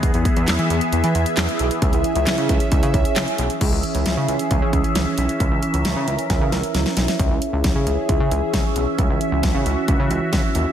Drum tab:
CC |----------------|----------------|x---------------|----------------|
HH |xxxxxxxxxxxxxxxx|xxxxxxxxxxxxxxxx|x-xxx-xxx-xxx-xx|x-xxx-xxx-xxx-xx|
CP |----x-------x---|----x-------x---|----------------|----------------|
SD |----o-------o---|----o-------o---|----o-------o---|----o---o-o-oooo|
BD |o-o-------------|o-----o-o-o-----|o-------o-o-----|o-------o-------|

CC |----------------|----------------|
HH |x-x-x-x-x-x-x-x-|x-x-x-x-x-x-x-x-|
CP |----------------|----------------|
SD |----o-------o---|----o-------o---|
BD |o---o---o---o---|o---o---o---o---|